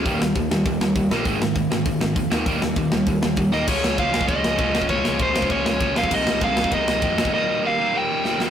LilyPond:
<<
  \new Staff \with { instrumentName = "Overdriven electric guitar" } { \time 4/4 \key des \lydian \tempo 4 = 198 r1 | r1 | r2. r8 ees''8 | des''4 f''4 ees''2 |
des''4 c''4 des''4. f''8 | ees''4 f''4 ees''2 | ees''4 f''4 g''4. r8 | }
  \new Staff \with { instrumentName = "Distorted electric guitar" } { \clef bass \time 4/4 \key des \lydian <ees g bes>8 <ees g>8 <ees g>8 <ees g>8 <ees g>8 <ees g>8 <ees g>8 <ees g bes>8 | <aes, ees aes>8 <aes, ees>8 <aes, ees>8 <aes, ees>8 <aes, ees>8 <aes, ees>8 <aes, ees>8 <aes, ees aes>8 | <ees g bes>8 <ees g>8 <ees g>8 <ees g>8 <ees g>8 <ees g>8 <ees g>8 <ees g bes>8 | <des f aes des' f'>4 <des f aes des' f'>8 <des f aes des' f'>8 <des f aes des' f'>4 <des f aes des' f'>8 <des f aes des' f'>8 |
<des f aes des' f'>4 <des f aes des' f'>8 <des f aes des' f'>8 <des f aes des' f'>4 <des f aes des' f'>8 <des f aes des' f'>8 | <c ees aes ees'>4 <c ees aes ees'>8 <c ees aes ees'>8 <c ees aes ees'>4 <c ees aes ees'>8 <c ees aes ees'>8 | <ees g bes ees'>4 <ees g bes ees'>8 <ees g bes ees'>8 <ees g bes ees'>4 <ees g bes ees'>8 <ees g bes ees'>8 | }
  \new Staff \with { instrumentName = "Picked electric bass" } { \clef bass \time 4/4 \key des \lydian ees,8 ees,8 ees,8 ees,8 ees,8 ees,8 ees,8 bes,,8 | aes,,8 aes,,8 aes,,8 aes,,8 aes,,8 aes,,8 f,8 ees,8 | ees,8 ees,8 ees,8 ees,8 ees,8 ees,8 ees,8 ees,8 | des,8 des,8 des,8 des,8 des,8 des,8 des,4 |
des,8 des,8 des,8 des,8 des,8 des,8 des,8 ces,8 | c,8 c,8 c,8 c,8 c,8 c,8 f,4 | r1 | }
  \new DrumStaff \with { instrumentName = "Drums" } \drummode { \time 4/4 <hho bd>8 sn8 <hho bd>8 sn8 <hho bd>8 sn8 <hho bd>8 sn8 | <hho bd>8 sn8 <hho bd>8 sn8 <hho bd>8 sn8 <hho bd>8 sn8 | <hho bd>8 sn8 <hho bd>8 sn8 <hho bd>8 sn8 <hho bd>8 sn8 | <cymc bd>8 sn8 <bd cymr>8 sn16 bd16 <bd cymr>8 sn8 <bd cymr>8 sn16 bd16 |
<bd cymr>8 sn8 <bd cymr>8 sn16 bd16 <bd cymr>8 sn8 <bd cymr>8 sn16 bd16 | <cymc bd>8 sn8 <bd cymr>8 sn16 bd16 <bd cymr>8 sn8 <bd cymr>8 sn16 bd16 | r4 r4 r4 sn8 sn8 | }
>>